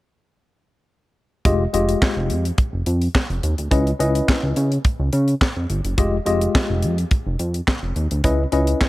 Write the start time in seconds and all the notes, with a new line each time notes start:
1.45 F1 G#3 F4 G4 D#5, kick, closed hi-hat
1.73 F1 G#3 F4 G4 D#5, closed hi-hat
1.89 closed hi-hat
2.02 kick, snare, clap
2.17 F1
2.30 F2, closed hi-hat
2.45 closed hi-hat
2.58 kick, closed hi-hat
2.73 F1
2.86 F2, closed hi-hat
3.02 closed hi-hat
3.15 kick, snare, clap
3.30 F1, closed hi-hat
3.43 D#2, closed hi-hat
3.58 D2, closed hi-hat
3.71 C#2 C#4 E4 B4 D#5, kick, closed hi-hat
3.87 closed hi-hat
3.99 C#2 C#4 E4 B4 D#5, closed hi-hat
4.15 closed hi-hat
4.29 kick, snare, clap
4.43 C#2
4.56 C#3, closed hi-hat
4.72 closed hi-hat
4.85 kick, closed hi-hat
5.00 C#2
5.13 C#3, closed hi-hat
5.28 closed hi-hat
5.41 kick, snare, clap
5.56 F2
5.70 G1, closed hi-hat
5.85 F#1, closed hi-hat
5.98 F1 G#3 F4 G4 D#5, kick, closed hi-hat
6.26 F1 G#3 F4 G4 D#5, closed hi-hat
6.41 closed hi-hat
6.55 kick, snare, clap
6.70 F1
6.82 F2, closed hi-hat
6.98 closed hi-hat
7.11 kick, closed hi-hat
7.27 F1
7.39 F2, closed hi-hat
7.54 closed hi-hat
7.68 kick, snare, clap
7.83 F1
7.96 D#2, closed hi-hat
8.11 D2, closed hi-hat
8.24 C#2 C#4 E4 B4 D#5, kick, closed hi-hat
8.52 C#2 C#4 E4 B4 D#5, closed hi-hat
8.67 closed hi-hat
8.81 kick, snare, clap